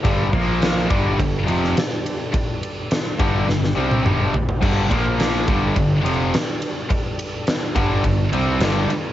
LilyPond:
<<
  \new Staff \with { instrumentName = "Tonewheel organ" } { \time 4/4 \key g \minor \tempo 4 = 105 << { a'8 c''4 a'2~ a'8~ | a'4. g'2~ g'8~ | g'8 c''4 a'2~ a'8~ | a'1 | } \\ { <g d'>8 <bes f'>4 <g d'>2~ <g d'>8~ | <g d'>1~ | <g d'>8 <bes f'>4 <g d'>2~ <g d'>8~ | <g d'>1 | } >> }
  \new Staff \with { instrumentName = "Distorted electric guitar" } { \clef bass \time 4/4 \key g \minor <g, d g>8 <bes, f bes>4 <g, d g>8 <g, d>8 <f, c f>8 r4 | r4. <g, d g>8 <g, d>8 <c g c'>8 <g, d g>8 r8 | <g, d g>8 <bes, f bes>4 <g, d g>8 <g, d>8 <f, c f>8 r4 | r4. <g, d g>8 <g, d>8 <c g c'>8 <g, d g>8 r8 | }
  \new Staff \with { instrumentName = "Distorted electric guitar" } { \clef bass \time 4/4 \key g \minor <g, d g>8 <bes, f bes>4 <g, d g>8 <g, d>8 <f, c f>8 r4 | r4. <g, d g>8 <g, d>8 <c g c'>8 <g, d g>8 r8 | <g, d g>8 <bes, f bes>4 <g, d g>8 <g, d>8 <f, c f>8 r4 | r4. <g, d g>8 <g, d>8 <c g c'>8 <g, d g>8 r8 | }
  \new Staff \with { instrumentName = "Overdriven electric guitar" } { \clef bass \time 4/4 \key g \minor <g, d g>8 <bes, f bes>4 <g, d g>8 <g, d>8 <f, c f>8 r4 | r4. <g, d g>8 <g, d>8 <c g c'>8 <g, d g>8 r8 | <g, d g>8 <bes, f bes>4 <g, d g>8 <g, d>8 <f, c f>8 r4 | r4. <g, d g>8 <g, d>8 <c g c'>8 <g, d g>8 r8 | }
  \new Staff \with { instrumentName = "Picked electric bass" } { \clef bass \time 4/4 \key g \minor g,,8 bes,,4 g,,8 g,,8 f,,8 r4 | r4. g,,8 g,,8 c,8 g,,8 r8 | g,,8 bes,,4 g,,8 g,,8 f,,8 r4 | r4. g,,8 g,,8 c,8 g,,8 r8 | }
  \new DrumStaff \with { instrumentName = "Drums" } \drummode { \time 4/4 <bd cymr>8 <bd cymr>8 <cymr sn>16 sn16 <bd cymr>8 <bd cymr>8 cymr16 sn16 <cymr sn>8 cymr8 | <bd cymr>8 cymr8 <cymr sn>8 <bd cymr>8 sn16 sn8 tommh16 toml8 tomfh16 tomfh16 | <cymc bd>8 <bd cymr>8 <cymr sn>16 sn16 <bd cymr>8 <bd cymr>8 cymr8 <cymr sn>8 cymr8 | <bd cymr>8 cymr8 <cymr sn>8 <bd cymr>8 <bd cymr>8 cymr8 <cymr sn>8 cymr8 | }
>>